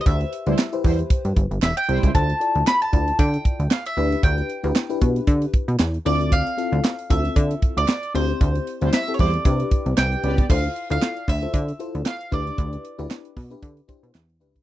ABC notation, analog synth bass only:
X:1
M:4/4
L:1/16
Q:"Swing 16ths" 1/4=115
K:Ddor
V:1 name="Analog synth bass" clef=bass
D,,2 z D,, z2 E,,2 z G,, G,,, G,,, E,,, z C,, ^C,, | D,,2 z D,, z2 D,,2 D,2 z D,, z2 D,,2 | D,,2 z D,, z2 B,,2 D,2 z B,, E,,2 D,,2- | D,,2 z D,, z2 D,,2 D,2 z D,, z2 D,,2 |
D,,2 z D,, z2 E,,2 C,2 z C,, C,,2 ^C,,2 | D,,2 z D,, z2 D,,2 D,2 z D,, z2 D,,2 | D,,2 z D,, z2 B,,2 D,2 z B,, E,,2 ^C,,2 |]